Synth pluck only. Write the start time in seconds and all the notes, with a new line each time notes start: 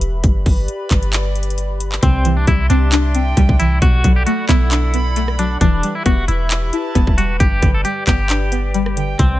2.02 C3
2.25 E3
2.47 G3
2.70 C4
2.92 D4
3.15 C4
3.37 G3
3.59 E3
3.82 B2
4.04 F#3
4.27 A3
4.49 B3
4.71 D4
4.94 B3
5.16 A3
5.39 F#3
5.61 E3
5.83 G3
6.06 B3
6.28 E4
6.51 E5
6.73 E4
6.95 B3
7.18 G3
7.40 G2
7.62 D3
7.85 G3
8.07 B3
8.30 D4
8.52 B3
8.74 G3
8.97 D3
9.19 C3